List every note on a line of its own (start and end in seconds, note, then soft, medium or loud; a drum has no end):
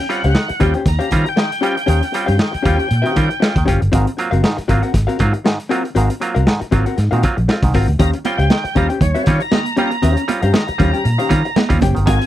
0.00 0.11 G5 loud
0.09 0.23 G3 medium
0.09 0.23 C4 medium
0.09 0.23 C#4 medium
0.09 0.23 F4 medium
0.09 0.63 F#5 medium
0.09 muted hollow-body jazz guitar stroke soft
0.09 closed hi-hat medium
0.24 0.34 C#2 loud
0.24 0.33 C#4 medium
0.24 0.34 G4 medium
0.24 0.34 C5 medium
0.24 0.34 F5 medium
0.24 closed hi-hat soft
0.34 0.48 D#3 medium
0.34 snare loud
0.49 muted hollow-body jazz guitar stroke medium
0.49 muted fingered electric bass stroke soft
0.49 closed hi-hat medium
0.60 0.73 D#2 medium
0.60 0.74 G3 medium
0.60 0.74 C4 medium
0.60 0.74 C#4 medium
0.60 0.74 F4 medium
0.60 0.74 G4 medium
0.60 0.74 C5 medium
0.60 0.74 F5 medium
0.60 0.74 G5 medium
0.60 kick loud
0.60 closed hi-hat medium
0.74 0.80 C#4 soft
0.74 0.84 C#4 medium
0.74 0.80 F4 soft
0.74 0.85 G4 medium
0.74 0.85 C5 medium
0.74 0.86 G5 medium
0.74 closed hi-hat soft
0.86 0.98 D#2 loud
0.86 1.29 A#5 loud
0.86 muted hollow-body jazz guitar stroke soft
0.86 kick medium
0.86 snare soft
0.86 closed hi-hat medium
0.99 1.09 C#4 medium
0.99 1.10 G4 medium
0.99 1.10 C5 medium
0.99 1.10 F5 medium
0.99 closed hi-hat medium
1.10 1.24 D#3 loud
1.10 1.25 G3 medium
1.10 1.25 C4 medium
1.10 1.25 C#4 medium
1.10 1.25 F4 loud
1.10 muted hollow-body jazz guitar stroke soft
1.10 kick loud
1.10 closed hi-hat medium
1.25 1.64 G5 loud
1.25 muted hollow-body jazz guitar stroke soft
1.25 closed hi-hat soft
1.36 1.51 D#3 medium
1.36 muted hollow-body jazz guitar stroke soft
1.36 snare loud
1.52 closed hi-hat medium
1.61 1.76 G3 medium
1.61 1.76 C4 medium
1.61 1.76 C#4 medium
1.61 1.76 F4 medium
1.61 1.76 G4 medium
1.61 1.75 C5 medium
1.61 1.76 G5 medium
1.61 closed hi-hat medium
1.65 3.64 G5 medium
1.76 1.82 C#4 soft
1.76 1.82 F4 soft
1.76 muted hollow-body jazz guitar stroke soft
1.76 closed hi-hat medium
1.86 2.00 D#2 loud
1.86 2.02 D#3 medium
1.86 2.04 C#4 medium
1.86 2.01 G4 medium
1.86 2.01 C5 loud
1.86 2.00 F5 loud
1.86 closed hi-hat medium
2.01 2.08 C#4 soft
2.01 2.08 F4 soft
2.01 muted hollow-body jazz guitar stroke soft
2.01 closed hi-hat medium
2.12 2.27 G3 medium
2.12 2.27 C4 medium
2.12 2.27 C#4 medium
2.12 2.27 F4 medium
2.12 muted hollow-body jazz guitar stroke medium
2.12 closed hi-hat medium
2.26 2.38 G2 loud
2.26 2.36 C#4 medium
2.26 2.37 G4 medium
2.26 2.37 C5 medium
2.26 2.37 F5 medium
2.26 closed hi-hat soft
2.37 2.52 D#3 medium
2.37 muted hollow-body jazz guitar stroke soft
2.37 snare loud
2.51 muted hollow-body jazz guitar stroke soft
2.51 muted fingered electric bass stroke medium
2.51 closed hi-hat soft
2.62 2.77 D#2 medium
2.62 2.78 G3 medium
2.62 2.78 C4 medium
2.62 2.76 C#4 medium
2.62 2.78 C#4 medium
2.62 2.78 F4 medium
2.62 2.75 G4 medium
2.62 2.75 C5 medium
2.62 2.75 F5 medium
2.62 kick medium
2.62 closed hi-hat medium
2.75 2.87 C#4 medium
2.75 2.87 G4 medium
2.75 2.87 C5 medium
2.75 2.88 G5 medium
2.79 2.85 C#4 soft
2.79 2.85 F4 soft
2.79 closed hi-hat medium
2.88 3.03 A#2 medium
2.88 muted hollow-body jazz guitar stroke soft
2.88 closed hi-hat medium
2.93 2.97 C#4 soft
2.93 2.97 F4 soft
3.02 3.13 C#4 medium
3.02 3.14 G4 medium
3.02 3.14 C5 medium
3.02 3.15 F5 medium
3.02 closed hi-hat medium
3.06 3.16 D#3 medium
3.14 3.28 D#3 loud
3.14 3.29 G3 medium
3.14 3.29 C4 medium
3.14 3.29 C#4 medium
3.14 3.29 F4 medium
3.14 muted hollow-body jazz guitar stroke soft
3.14 kick medium
3.14 closed hi-hat medium
3.28 muted hollow-body jazz guitar stroke soft
3.28 closed hi-hat soft
3.40 3.55 C#4 medium
3.40 3.55 F4 medium
3.40 muted hollow-body jazz guitar stroke soft
3.40 snare loud
3.56 3.65 D#2 medium
3.56 3.67 D#3 medium
3.56 kick medium
3.56 closed hi-hat medium
3.65 3.80 F#1 loud
3.65 3.80 C#4 medium
3.65 3.81 F4 medium
3.65 3.80 G4 medium
3.65 3.80 C5 medium
3.65 3.80 G5 medium
3.65 kick loud
3.65 closed hi-hat medium
3.81 3.91 G1 medium
3.81 muted hollow-body jazz guitar stroke soft
3.81 closed hi-hat soft
3.92 4.05 G#1 loud
3.92 4.06 G#2 medium
3.92 4.06 D#3 medium
3.92 4.09 C4 medium
3.92 4.05 F#4 medium
3.92 4.04 A#4 medium
3.92 4.04 F5 loud
3.92 kick loud
3.92 closed hi-hat loud
4.05 4.12 C4 soft
4.05 4.12 F4 soft
4.05 muted hollow-body jazz guitar stroke soft
4.05 closed hi-hat medium
4.17 4.31 F#3 medium
4.17 4.31 A#3 medium
4.17 4.31 C4 medium
4.17 4.31 F4 medium
4.17 muted hollow-body jazz guitar stroke soft
4.17 closed hi-hat medium
4.31 4.42 F#1 loud
4.31 4.41 C4 medium
4.31 4.42 F#4 medium
4.31 4.42 A#4 medium
4.31 4.42 F5 medium
4.31 closed hi-hat soft
4.43 4.57 G#2 medium
4.43 4.57 D#3 medium
4.43 muted hollow-body jazz guitar stroke soft
4.43 snare loud
4.57 muted hollow-body jazz guitar stroke soft
4.57 muted fingered electric bass stroke medium
4.57 closed hi-hat soft
4.68 4.81 G#1 medium
4.68 4.82 F#3 medium
4.68 4.82 A#3 medium
4.68 4.82 C4 medium
4.68 4.82 F4 medium
4.68 4.82 F#4 medium
4.68 4.82 A#4 medium
4.68 4.82 F5 medium
4.68 kick medium
4.68 closed hi-hat medium
4.82 4.92 C4 soft
4.82 4.88 C4 soft
4.82 4.88 F4 soft
4.82 4.92 F#4 soft
4.82 4.93 A#4 medium
4.82 4.93 F#5 medium
4.82 closed hi-hat soft
4.93 5.06 G#1 loud
4.93 muted hollow-body jazz guitar stroke soft
4.93 kick medium
4.93 snare soft
4.93 closed hi-hat medium
5.07 5.17 C4 medium
5.07 5.17 F#4 medium
5.07 5.18 A#4 medium
5.07 5.18 F5 medium
5.07 closed hi-hat medium
5.18 5.32 G#2 loud
5.18 5.32 F#3 medium
5.18 5.33 A#3 medium
5.18 5.33 C4 medium
5.18 5.33 F4 loud
5.18 muted hollow-body jazz guitar stroke soft
5.18 kick loud
5.18 closed hi-hat medium
5.33 muted hollow-body jazz guitar stroke medium
5.33 closed hi-hat soft
5.44 5.58 G#2 medium
5.44 5.58 D#3 medium
5.44 muted hollow-body jazz guitar stroke soft
5.44 snare loud
5.60 closed hi-hat medium
5.69 5.83 F#3 medium
5.69 5.83 A#3 medium
5.69 5.84 C4 medium
5.69 5.84 F4 medium
5.69 5.83 F#4 medium
5.69 5.83 A#4 medium
5.69 5.83 F#5 medium
5.69 closed hi-hat medium
5.83 5.90 C4 soft
5.83 5.90 F4 soft
5.83 muted hollow-body jazz guitar stroke soft
5.83 closed hi-hat medium
5.95 6.08 G#1 loud
5.95 6.09 G#2 medium
5.95 6.09 D#3 medium
5.95 6.12 C4 medium
5.95 6.09 F#4 medium
5.95 6.09 A#4 medium
5.95 6.08 F5 medium
5.95 closed hi-hat medium
6.09 6.15 C4 soft
6.09 6.15 F4 soft
6.09 muted hollow-body jazz guitar stroke soft
6.09 closed hi-hat medium
6.20 6.34 F#3 medium
6.20 6.34 A#3 medium
6.20 6.34 C4 medium
6.20 6.34 F4 medium
6.20 muted hollow-body jazz guitar stroke soft
6.20 closed hi-hat medium
6.35 6.45 C2 medium
6.35 6.44 C4 medium
6.35 6.44 F#4 medium
6.35 6.45 A#4 medium
6.35 6.46 F5 medium
6.35 closed hi-hat soft
6.45 6.60 G#2 medium
6.45 6.60 D#3 medium
6.45 muted hollow-body jazz guitar stroke soft
6.45 snare loud
6.60 muted hollow-body jazz guitar stroke medium
6.60 muted fingered electric bass stroke medium
6.60 closed hi-hat medium
6.71 6.84 G#1 medium
6.71 6.85 F#3 medium
6.71 6.85 A#3 medium
6.71 6.85 C4 medium
6.71 6.85 F4 medium
6.71 6.86 F#4 medium
6.71 6.85 A#4 medium
6.71 6.86 F5 medium
6.71 kick medium
6.71 closed hi-hat medium
6.86 6.95 C4 soft
6.86 6.92 C4 soft
6.86 6.92 F4 soft
6.86 6.96 F#4 soft
6.86 6.96 A#4 medium
6.86 6.97 F#5 medium
6.86 closed hi-hat soft
6.96 7.10 G#2 loud
6.96 7.04 C4 soft
6.96 7.04 F4 soft
6.96 muted hollow-body jazz guitar stroke soft
6.96 snare soft
6.96 closed hi-hat medium
7.11 7.22 G#2 medium
7.11 7.21 A#2 medium
7.11 7.23 D#3 medium
7.11 7.22 C4 medium
7.11 7.22 F#4 medium
7.11 7.23 A#4 medium
7.11 7.23 F5 medium
7.11 closed hi-hat medium
7.23 7.36 F#3 medium
7.23 7.36 A#3 medium
7.23 7.37 C4 medium
7.23 7.37 F4 medium
7.23 muted hollow-body jazz guitar stroke soft
7.23 kick loud
7.23 closed hi-hat medium
7.37 7.47 A#1 medium
7.37 muted hollow-body jazz guitar stroke soft
7.37 closed hi-hat soft
7.48 7.62 C4 medium
7.48 7.62 F4 medium
7.48 muted hollow-body jazz guitar stroke soft
7.48 snare loud
7.62 7.72 C2 medium
7.62 7.73 G#2 medium
7.62 7.73 D#3 medium
7.62 kick loud
7.62 closed hi-hat medium
7.74 7.86 G#1 medium
7.74 7.88 C4 medium
7.74 7.87 C4 medium
7.74 7.87 F4 medium
7.74 7.88 F#4 medium
7.74 7.88 A#4 medium
7.74 7.88 F#5 medium
7.74 kick loud
7.74 open hi-hat medium
7.88 7.97 D2 medium
7.88 muted hollow-body jazz guitar stroke soft
7.88 closed hi-hat medium
7.99 8.11 D#2 loud
7.99 8.13 D#3 medium
7.99 8.16 C#4 medium
7.99 8.14 G4 medium
7.99 8.13 C5 loud
7.99 8.12 F5 loud
7.99 8.11 A#5 loud
7.99 kick loud
7.99 closed hi-hat loud
7.99 muted conga soft
8.13 8.19 C#4 soft
8.13 8.19 F4 soft
8.13 muted hollow-body jazz guitar stroke soft
8.13 closed hi-hat medium
8.24 8.38 G3 medium
8.24 8.38 C4 medium
8.24 8.38 C#4 medium
8.24 8.38 F4 medium
8.24 8.78 G5 medium
8.24 muted hollow-body jazz guitar stroke soft
8.24 closed hi-hat medium
8.24 muted conga medium
8.38 8.48 C#2 medium
8.38 8.48 C#4 medium
8.38 8.49 G4 medium
8.38 8.49 C5 medium
8.38 8.49 F5 medium
8.38 closed hi-hat medium
8.49 8.64 D#3 medium
8.49 muted hollow-body jazz guitar stroke medium
8.49 snare loud
8.49 high conga medium
8.64 muted hollow-body jazz guitar stroke soft
8.64 muted fingered electric bass stroke soft
8.64 closed hi-hat soft
8.75 8.88 D#2 medium
8.75 8.89 G3 medium
8.75 8.89 C4 medium
8.75 8.89 C#4 medium
8.75 8.89 F4 medium
8.75 8.89 G4 medium
8.75 8.89 C5 medium
8.75 8.89 F5 medium
8.75 8.88 A#5 loud
8.75 kick medium
8.75 closed hi-hat medium
8.89 8.99 C#4 medium
8.89 8.95 C#4 soft
8.89 8.95 F4 soft
8.89 9.00 G4 medium
8.89 9.00 C5 medium
8.89 9.00 G5 medium
8.89 closed hi-hat medium
9.00 9.13 D#2 loud
9.00 9.42 C#5 loud
9.00 muted hollow-body jazz guitar stroke soft
9.00 kick medium
9.00 closed hi-hat medium
9.00 low conga medium
9.15 9.24 C#4 medium
9.15 9.24 G4 medium
9.15 9.25 C5 medium
9.15 9.25 F5 medium
9.15 closed hi-hat medium
9.25 9.39 D#3 loud
9.25 9.40 G3 loud
9.25 9.40 C4 medium
9.25 9.40 C#4 medium
9.25 9.40 F4 medium
9.25 muted hollow-body jazz guitar stroke soft
9.25 kick medium
9.25 closed hi-hat medium
9.25 muted conga medium
9.40 9.77 A#5 loud
9.40 muted hollow-body jazz guitar stroke medium
9.40 closed hi-hat soft
9.51 9.65 D#3 medium
9.51 muted hollow-body jazz guitar stroke soft
9.51 snare loud
9.51 high conga loud
9.66 closed hi-hat medium
9.76 9.90 G3 medium
9.76 9.91 C4 medium
9.76 9.91 C#4 medium
9.76 9.91 F4 medium
9.76 9.91 G4 medium
9.76 9.90 C5 medium
9.76 9.90 G5 medium
9.76 11.77 A#5 medium
9.76 closed hi-hat medium
9.76 high conga medium
9.91 9.96 C#4 soft
9.91 9.96 F4 soft
9.91 muted hollow-body jazz guitar stroke soft
9.91 closed hi-hat soft
10.02 10.15 D#2 loud
10.02 10.15 D#3 medium
10.02 10.23 C#4 medium
10.02 10.16 G4 medium
10.02 10.16 C5 medium
10.02 10.15 F5 loud
10.02 closed hi-hat loud
10.16 10.22 C#4 soft
10.16 10.22 F4 soft
10.16 muted hollow-body jazz guitar stroke soft
10.16 closed hi-hat medium
10.28 10.41 G3 medium
10.28 10.41 C4 medium
10.28 10.41 C#4 medium
10.28 10.41 F4 medium
10.28 muted hollow-body jazz guitar stroke soft
10.28 closed hi-hat medium
10.28 muted conga medium
10.42 10.52 G2 loud
10.42 10.53 C#4 medium
10.42 10.53 G4 medium
10.42 10.54 C5 medium
10.42 10.53 F5 medium
10.42 closed hi-hat medium
10.53 10.66 D#3 medium
10.53 muted hollow-body jazz guitar stroke medium
10.53 snare loud
10.53 high conga medium
10.68 muted hollow-body jazz guitar stroke soft
10.68 muted fingered electric bass stroke medium
10.68 closed hi-hat soft
10.78 10.91 D#2 loud
10.78 10.92 G3 medium
10.78 10.92 C4 medium
10.78 10.92 C#4 medium
10.78 10.93 C#4 medium
10.78 10.92 F4 medium
10.78 10.93 G4 medium
10.78 10.92 C5 medium
10.78 10.93 F5 medium
10.78 kick medium
10.78 closed hi-hat medium
10.78 low conga medium
10.93 10.98 C#4 soft
10.93 11.04 C#4 soft
10.93 10.98 F4 soft
10.93 11.04 G4 medium
10.93 11.04 C5 medium
10.93 11.04 G5 medium
10.93 closed hi-hat medium
11.04 11.17 A#2 loud
11.04 11.10 C#4 soft
11.04 11.10 F4 soft
11.04 muted hollow-body jazz guitar stroke medium
11.04 closed hi-hat medium
11.18 11.29 D#3 medium
11.18 11.30 C#4 medium
11.18 11.30 G4 medium
11.18 11.31 C5 medium
11.18 11.31 F5 medium
11.18 closed hi-hat medium
11.29 11.42 D#3 loud
11.29 11.42 G3 medium
11.29 11.43 C4 medium
11.29 11.43 C#4 medium
11.29 11.43 F4 medium
11.29 muted hollow-body jazz guitar stroke soft
11.29 kick medium
11.29 closed hi-hat medium
11.29 muted conga medium
11.45 muted hollow-body jazz guitar stroke medium
11.45 closed hi-hat soft
11.56 muted hollow-body jazz guitar stroke soft
11.56 snare loud
11.56 high conga loud
11.69 11.79 D#2 medium
11.69 11.79 G3 medium
11.69 11.79 C4 medium
11.69 11.80 C#4 medium
11.69 11.80 F4 medium
11.69 kick loud
11.69 closed hi-hat medium
11.81 11.94 F#1 medium
11.81 11.95 C#4 medium
11.81 11.95 G4 medium
11.81 11.95 C5 medium
11.81 11.96 G5 medium
11.81 kick loud
11.81 closed hi-hat medium
11.81 high conga medium
11.95 12.07 G1 loud
11.95 12.05 D#3 medium
11.95 muted hollow-body jazz guitar stroke soft
11.95 closed hi-hat medium
12.06 12.19 G#1 loud
12.06 12.19 G#2 medium
12.06 12.19 D#3 medium
12.06 12.23 C4 medium
12.06 12.20 F#4 medium
12.06 12.20 A#4 medium
12.06 12.20 F5 loud
12.06 12.26 G#5 loud
12.06 kick loud
12.06 closed hi-hat loud
12.06 muted conga soft
12.21 12.25 C4 soft
12.21 12.26 F4 soft
12.21 muted hollow-body jazz guitar stroke soft
12.21 closed hi-hat medium